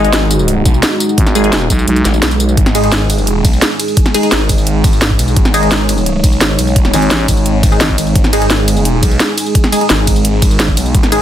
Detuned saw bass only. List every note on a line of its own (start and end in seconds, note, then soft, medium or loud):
0.00 0.64 G#1 medium
0.65 0.82 B1 loud
2.05 2.21 A1 loud
2.22 2.56 B1 loud
2.57 3.43 G#1 loud
3.45 3.61 B1 loud
4.32 5.18 G#1 loud
5.19 5.35 B1 medium
5.37 6.22 G#1 medium
6.24 6.40 B1 loud
6.41 6.57 G#1 loud
6.59 6.92 B1 loud
7.28 7.79 G#1 medium
7.98 8.14 G#1 medium
8.16 9.01 G#1 loud
9.03 9.19 B1 loud
9.90 10.76 G#1 loud
10.77 10.93 B1 loud
10.95 11.22 G#1 loud